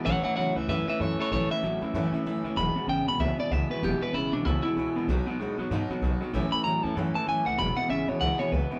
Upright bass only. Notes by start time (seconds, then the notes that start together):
0.06 A1
0.25 muted upright bass stroke
0.36 C#2
0.56 C#2
0.68 F#2
0.88 muted upright bass stroke
1.00 F#2
1.18 muted upright bass stroke
1.31 A1
1.50 muted upright bass stroke
1.62 A1
1.81 E2
1.93 F#2
2.12 muted upright bass stroke
2.25 F#2
2.43 C#2
2.56 E1
2.74 muted upright bass stroke
2.87 G#1
3.06 A1
3.19 C#2
3.38 muted upright bass stroke
3.51 C#2
3.82 E1
4.01 muted upright bass stroke
4.13 E1
4.32 B1
4.45 C#2
4.63 muted upright bass stroke
4.75 C#2
4.94 C#2
5.07 B1
5.39 D#2
5.58 E2
5.71 G#2
5.89 muted upright bass stroke
6.01 B1
6.22 muted upright bass stroke
6.33 A1
6.53 muted upright bass stroke
6.64 A1
6.84 E2
6.96 F#2
7.14 muted upright bass stroke
7.28 F#2
7.46 C#2
7.59 E1
7.77 muted upright bass stroke
7.89 G#1
8.07 A1
8.21 C#2
8.40 muted upright bass stroke
8.52 C#2
8.71 muted upright bass stroke